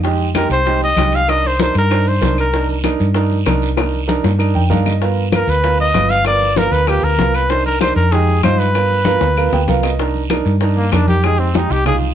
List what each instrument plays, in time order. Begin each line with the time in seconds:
Already playing: fingered electric bass F2
0.03 grand piano G#3 D#4 G4, high bongo, high conga, long guiro, maracas
0.20 high conga, maracas
0.34 grand piano G#3 D#4 G4, trumpet A#4, high bongo, high conga, short guiro, claves, maracas
0.49 fingered electric bass C2, trumpet C5, high bongo, high conga, short guiro, maracas
0.65 grand piano G#3 D#4 G4, high bongo, high conga, long guiro, maracas
0.81 trumpet D#5, high bongo, high conga, maracas
0.97 fingered electric bass C2, grand piano G#3 D#4 G4, high bongo, low bongo, high conga, short guiro, claves, maracas
1.12 trumpet F5, high bongo, short guiro, maracas
1.28 grand piano D4 D#4 A#4, trumpet D#5, high bongo, high conga, long guiro, claves, maracas
1.44 trumpet C5, high bongo, high conga, maracas
1.59 grand piano D4 D#4 A#4, trumpet C5, high bongo, high conga, short guiro, maracas
1.75 fingered electric bass G2, trumpet A#4, high bongo, high conga, short guiro, maracas
1.90 grand piano D4 D#4 C5, high bongo, high conga, long guiro, claves, maracas
2.07 trumpet C5, high conga, maracas
2.21 fingered electric bass C2, grand piano D4 D#4 A#4, high bongo, low bongo, high conga, short guiro, maracas
2.37 trumpet A#4, high bongo, high conga, short guiro, claves, maracas
2.52 grand piano D4 D#4 A#4, high bongo, high conga, long guiro, maracas
2.69 high conga, maracas
2.84 grand piano D4 D#4 A#4, high bongo, high conga, short guiro, claves, maracas
2.99 fingered electric bass G2, high bongo, high conga, short guiro, maracas
3.14 grand piano D4 D#4 A#4, high bongo, high conga, long guiro, maracas
3.30 high bongo, high conga, maracas
3.46 fingered electric bass C2, grand piano D4 D#4 A#4, high bongo, low bongo, high conga, short guiro, claves, maracas
3.62 high bongo, short guiro, maracas
3.77 grand piano D4 D#4 A#4, high bongo, high conga, long guiro, claves, maracas
3.93 high conga, maracas
4.08 grand piano D4 D#4 A#4, high conga, short guiro, maracas
4.24 fingered electric bass G2, high bongo, short guiro, maracas
4.38 grand piano D4 D#4 A#4, high conga, long guiro, claves, maracas
4.55 fingered electric bass F2, grand piano G5, high conga, maracas
4.70 fingered electric bass G2, grand piano D4 D#4 A#4 F5, low bongo, high conga, short guiro, maracas
4.85 grand piano D#5, low bongo, high conga, short guiro, claves, maracas
5.02 grand piano B3 F4 A#4, high bongo, high conga, long guiro, maracas
5.17 high conga, maracas
5.32 grand piano B3 F4 A#4, trumpet A#4, high bongo, high conga, short guiro, claves, maracas
5.47 fingered electric bass D2, trumpet B4, high bongo, high conga, short guiro, maracas
5.63 grand piano B3 F4 A#4, high bongo, high conga, long guiro, maracas
5.79 trumpet D#5, high bongo, high conga, maracas
5.94 fingered electric bass G1, grand piano B3 F4 B4, high bongo, low bongo, high conga, short guiro, claves, maracas
6.10 trumpet F5, high bongo, short guiro, maracas
6.25 grand piano B3 F4 A#4, trumpet D5, high bongo, high conga, long guiro, claves, maracas
6.40 high bongo, high conga, maracas
6.56 grand piano B3 F4 A#4, trumpet A#4, high bongo, high conga, short guiro, maracas
6.71 fingered electric bass D2, trumpet B4, high bongo, high conga, short guiro, maracas
6.87 grand piano B3 F4 A#4, trumpet G4, high bongo, high conga, long guiro, claves, maracas
7.02 fingered electric bass D2, trumpet A#4, high conga, maracas
7.18 fingered electric bass C2, grand piano B3 F4 A#4, high bongo, low bongo, high conga, short guiro, maracas
7.34 trumpet B4, high bongo, high conga, short guiro, claves, maracas
7.49 grand piano D4 D#4 A#4, trumpet C5, high bongo, high conga, long guiro, maracas
7.66 trumpet A#4, high conga, maracas
7.80 grand piano D4 D#4 A#4, trumpet C5, high bongo, high conga, short guiro, claves, maracas
7.96 fingered electric bass F2, trumpet A#4, high bongo, high conga, short guiro, maracas
8.12 grand piano G#3 D#4 G4, trumpet G#4, high bongo, high conga, long guiro, maracas
8.28 high bongo, high conga, maracas
8.43 fingered electric bass G2, grand piano G#3 D#4 F4, trumpet C5, high bongo, low bongo, high conga, short guiro, claves, maracas
8.59 trumpet B4, high bongo, short guiro, maracas
8.74 grand piano B3 F4 A#4, high bongo, high conga, long guiro, claves, maracas
8.90 high bongo, high conga, maracas
9.05 grand piano B3 F4 A#4, high bongo, high conga, short guiro, maracas
9.21 fingered electric bass D2, high bongo, short guiro, maracas
9.37 grand piano B3 F4 A#4, high conga, long guiro, claves, maracas
9.52 fingered electric bass D2, grand piano G5, low bongo, high conga, maracas
9.68 fingered electric bass C2, grand piano B3 F4 A#4 F5, low bongo, high conga, short guiro, maracas
9.83 grand piano D#5, low bongo, short guiro, claves, maracas
9.99 grand piano D4 D#4 A#4, high bongo, high conga, long guiro, maracas
10.15 high conga, maracas
10.30 grand piano D4 D#4 A#4, high bongo, high conga, short guiro, claves, maracas
10.45 fingered electric bass G2, high bongo, high conga, short guiro, maracas
10.60 grand piano D4 D#4 A#4, high bongo, high conga, long guiro, maracas
10.77 trumpet A#3, high bongo, high conga, maracas
10.91 fingered electric bass F2, trumpet D4, grand piano D4 D#4 A#4, high bongo, low bongo, high conga, short guiro, claves, maracas
11.08 trumpet G4, high bongo, high conga, short guiro, maracas
11.23 grand piano G#3 D#4 G4, trumpet G#4, high bongo, high conga, long guiro, claves, maracas
11.39 trumpet C4, high bongo, high conga, maracas
11.54 grand piano G#3 D#4 G4, trumpet D#4, high bongo, high conga, short guiro, maracas
11.69 fingered electric bass C2, trumpet G4, high bongo, high conga, short guiro, maracas
11.85 grand piano G#3 D#4 F4, trumpet G#4, high bongo, high conga, low conga, long guiro, claves, maracas
12.01 high conga, maracas